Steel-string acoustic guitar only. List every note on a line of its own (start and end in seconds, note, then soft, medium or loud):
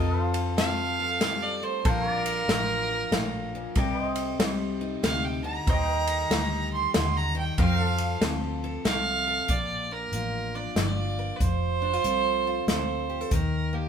0.00 1.22 F3 medium
0.00 0.57 C4 medium
0.00 1.83 F4 medium
0.00 0.99 A4 medium
0.59 1.83 C4 medium
1.00 1.83 A4 medium
1.23 1.62 G3 medium
1.63 1.86 A3 medium
1.87 2.49 F3 medium
1.87 3.75 D4 medium
1.87 2.90 F4 medium
2.51 3.77 F3 medium
2.91 3.74 F4 medium
3.14 3.54 A2 medium
3.55 3.77 A#2 medium
3.78 5.02 C3 medium
4.41 5.65 G3 medium
4.81 5.65 D#4 medium
5.03 5.44 C3 medium
5.44 5.67 D3 medium
5.68 6.95 D#3 medium
6.32 7.56 G3 medium
6.95 7.34 D3 medium
7.35 7.58 D#3 medium
7.59 10.13 F3 medium
8.22 9.47 C4 medium
8.64 9.26 A4 medium
8.86 9.50 C3 medium
9.28 9.47 A4 medium
9.49 11.38 A#2 medium
9.91 10.54 D4 soft
10.14 10.76 F3 medium
10.14 10.77 F4 medium
10.55 11.39 D4 medium
10.78 11.40 F3 medium
10.78 11.38 F4 medium
11.19 11.39 A#4 medium
11.41 13.32 F3 medium
11.82 11.93 D4 medium
11.93 12.45 F4 soft
12.05 12.67 C4 medium
12.05 12.68 A4 medium
12.47 13.30 F4 medium
12.69 13.29 C4 medium
12.69 13.09 A4 medium
13.10 13.21 G4 medium
13.21 13.32 A4 medium
13.33 13.89 D#3 medium
13.73 13.89 A#3 soft